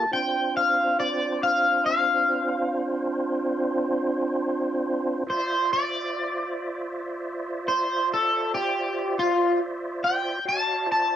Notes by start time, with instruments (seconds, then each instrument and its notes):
Already playing: clean electric guitar A5
0.11 tonewheel organ C4 D4 F4 C5, clean electric guitar G5
0.57 clean electric guitar F5
1.00 clean electric guitar D5
1.43 clean electric guitar F5
1.86 clean electric guitar F5
5.27 tonewheel organ F4 C5 D5 E5, clean electric guitar C5
5.73 clean electric guitar D5
7.68 clean electric guitar C5
8.13 clean electric guitar A4
8.54 clean electric guitar G4
9.19 clean electric guitar F4
10.04 clean electric guitar G5
10.45 tonewheel organ F#4 C#5 D#5 F5, clean electric guitar A5
10.86 tonewheel organ F4 C5 D5 E5
10.92 clean electric guitar A5